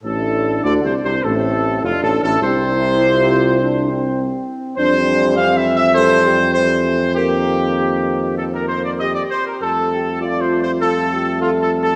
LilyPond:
<<
  \new Staff \with { instrumentName = "Trumpet section" } { \time 4/4 \key f \major \tempo 4 = 101 a'4 \tuplet 3/2 { d''8 c''8 c''8 } a'4 \tuplet 3/2 { f'8 a'8 a'8 } | c''2.~ c''8 r8 | c''4 \tuplet 3/2 { f''8 e''8 e''8 } c''4 c''4 | g'2 a'16 bes'16 c''16 d''16 ees''16 d''16 c''16 bes'16 |
a'4 \tuplet 3/2 { d''8 c''8 c''8 } a'4 \tuplet 3/2 { f'8 a'8 a'8 } | }
  \new Staff \with { instrumentName = "French horn section" } { \time 4/4 \key f \major d'2 c'4 d'4 | c'8 e'8 f'4 d'8 c'4. | d'4 c'4 a'8 g'4. | bes'4 g'4 \tuplet 3/2 { c''8 bes'8 bes'8 } g'4 |
a'8 g'8 f'4 f'8 g'8 a'4 | }
  \new Staff \with { instrumentName = "Trombone section" } { \clef bass \time 4/4 \key f \major << { a,4 \tuplet 3/2 { d8 c8 c8 } a,4 \tuplet 3/2 { f,8 a,8 a,8 } | c2.~ c8 r8 | g2 g4 g8 a8 | bes2.~ bes8 r8 |
a1 | } \\ { r1 | r1 | e2 e4 e4 | ees2.~ ees8 r8 |
g1 | } >> }
  \new Staff \with { instrumentName = "Tuba" } { \clef bass \time 4/4 \key f \major a,,4 \tuplet 3/2 { d,8 c,8 c,8 } a,,4 \tuplet 3/2 { f,,8 a,,8 a,,8 } | c,2.~ c,8 r8 | f,1~ | f,2.~ f,8 r8 |
f,1 | }
>>